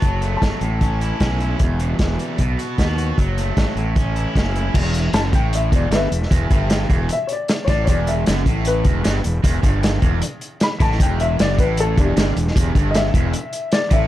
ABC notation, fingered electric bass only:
X:1
M:4/4
L:1/16
Q:1/4=153
K:Em
V:1 name="Fingered electric bass" clef=bass
F,,,4 G,,, z A,,,6 B,,,4 | E,,,4 E,,,2 z2 B,,,2 z2 ^D,,4 | F,,,4 ^G,,, z A,,,6 F,,,4 | E,,,4 F,,,2 A,,,4 E,,,2 G,,,2 E,,,2 |
E,,,2 G,,,4 E,,,2 z6 A,,,2 | E,,,4 F,,,2 A,,,4 E,,,2 G,,,2 E,,,2 | E,,,2 G,,,4 E,,,2 z6 A,,,2 | E,,,4 F,,,2 A,,,4 E,,,2 G,,,2 E,,,2 |
E,,,2 G,,,4 E,,,2 z6 A,,,2 |]